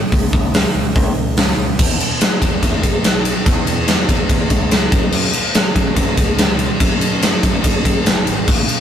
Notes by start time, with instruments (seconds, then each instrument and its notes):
0.12 fingered electric bass C#2, kick, open hi-hat
0.33 kick
0.54 snare, open hi-hat
0.75 fingered electric bass C#2
0.96 fingered electric bass C#2, kick, open hi-hat
1.17 fingered electric bass C#2
1.37 snare, open hi-hat
1.57 fingered electric bass C#2
1.79 fingered electric bass E2, kick, crash
2.00 ride
2.21 snare, ride
2.42 fingered electric bass E2, kick, ride
2.62 fingered electric bass E2, kick, ride
2.83 fingered electric bass B1, kick, ride
3.04 snare, ride
3.25 ride
3.46 fingered electric bass E2, kick, ride
3.67 ride
3.88 snare, ride
4.09 fingered electric bass E2, kick, ride
4.29 fingered electric bass E2, kick, ride
4.50 fingered electric bass C#2, kick, ride
4.71 snare, ride
4.92 fingered electric bass F#2, kick, ride
5.12 fingered electric bass F#2, crash
5.33 ride
5.55 snare, ride
5.76 fingered electric bass F#2, kick, ride
5.96 fingered electric bass F#2, kick, ride
6.17 fingered electric bass C#2, kick, ride
6.38 snare, ride
6.59 ride
6.80 fingered electric bass F#2, kick, ride
7.01 ride
7.22 snare, ride
7.43 fingered electric bass F#2, kick, ride
7.64 fingered electric bass F#2, kick, ride
7.85 fingered electric bass F#2, kick, ride
8.06 fingered electric bass F#1, snare, ride
8.27 fingered electric bass G#1, ride
8.48 fingered electric bass A1, kick, crash
8.69 ride